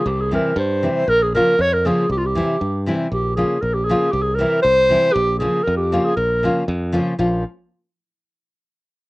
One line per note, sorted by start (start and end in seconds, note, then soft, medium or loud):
0.06 0.37 C2 loud
0.06 0.22 G4 medium
0.21 0.33 G#4 medium
0.31 0.51 C3 medium
0.31 0.52 E3 medium
0.31 0.52 G3 medium
0.31 0.52 C4 medium
0.31 0.52 E4 medium
0.31 0.57 A#4 medium
0.56 0.87 G2 loud
0.56 1.10 C5 loud
0.83 1.03 C3 medium
0.83 1.02 E3 medium
0.83 1.03 G3 medium
0.83 1.03 C4 medium
0.83 1.04 E4 medium
1.08 1.39 A#1 loud
1.08 1.24 A#4 loud
1.23 1.34 G#4 medium
1.35 1.54 C#3 medium
1.35 1.54 F3 medium
1.35 1.54 A#3 medium
1.35 1.54 C#4 medium
1.35 1.55 F4 medium
1.35 1.63 A#4 loud
1.59 1.90 F2 medium
1.59 1.75 C#5 loud
1.73 1.88 A#4 loud
1.85 2.04 C#3 medium
1.85 2.05 F3 medium
1.85 2.05 A#3 medium
1.85 2.05 C#4 medium
1.85 2.05 F4 medium
1.85 2.11 G#4 medium
2.10 2.40 C2 medium
2.10 2.19 G4 loud
2.18 2.27 F4 medium
2.26 2.87 G4 medium
2.35 2.55 C3 medium
2.35 2.55 E3 medium
2.35 2.55 G3 medium
2.35 2.56 C4 medium
2.35 2.56 E4 medium
2.61 2.92 G2 loud
2.86 3.06 C3 medium
2.86 3.06 E3 medium
2.86 3.07 G3 medium
2.86 3.07 C4 medium
2.86 3.07 E4 medium
3.12 3.42 A#1 medium
3.12 3.35 G4 medium
3.36 3.57 C#3 medium
3.36 3.57 F3 medium
3.36 3.57 A#3 medium
3.36 3.57 C#4 medium
3.36 3.57 F4 medium
3.36 3.63 G#4 medium
3.62 3.93 A#1 medium
3.62 3.76 A#4 loud
3.74 3.86 G4 medium
3.85 4.13 G#4 loud
3.89 4.08 C#3 medium
3.89 4.09 F3 medium
3.89 4.08 A#3 medium
3.89 4.09 C#4 medium
3.89 4.09 F4 medium
4.12 4.44 C2 medium
4.12 4.24 G4 loud
4.22 4.37 G#4 medium
4.35 4.58 C3 medium
4.35 4.62 A#4 medium
4.39 4.59 E3 medium
4.39 4.59 G3 medium
4.39 4.59 C4 medium
4.39 4.59 E4 medium
4.62 4.95 C2 loud
4.62 5.14 C5 loud
4.89 5.09 C3 medium
4.89 5.10 E3 medium
4.89 5.10 G3 medium
4.89 5.10 C4 medium
4.89 5.10 E4 medium
5.13 5.46 A#1 loud
5.13 5.38 G4 loud
5.39 5.60 C#3 medium
5.39 5.60 F3 medium
5.39 5.60 A#3 medium
5.39 5.61 C#4 medium
5.39 5.61 F4 medium
5.39 5.65 G#4 medium
5.64 5.98 F2 loud
5.64 5.76 A#4 loud
5.77 6.06 G4 medium
5.92 6.12 C#3 medium
5.92 6.12 F3 medium
5.92 6.12 A#3 medium
5.92 6.12 C#4 medium
5.92 6.12 F4 medium
6.05 6.16 G#4 loud
6.16 6.48 A#1 loud
6.16 6.64 A#4 loud
6.43 6.62 C#3 medium
6.43 6.63 F3 medium
6.43 6.63 A#3 medium
6.43 6.63 C#4 medium
6.43 6.63 F4 medium
6.68 6.99 F2 loud
6.92 7.13 C#3 medium
6.92 7.13 F3 medium
6.92 7.13 A#3 medium
6.92 7.13 C#4 medium
6.92 7.13 F4 loud
7.19 7.43 A#1 medium
7.19 7.43 F3 medium
7.19 7.43 A#3 medium
7.19 7.43 C#4 medium
7.19 7.43 F4 medium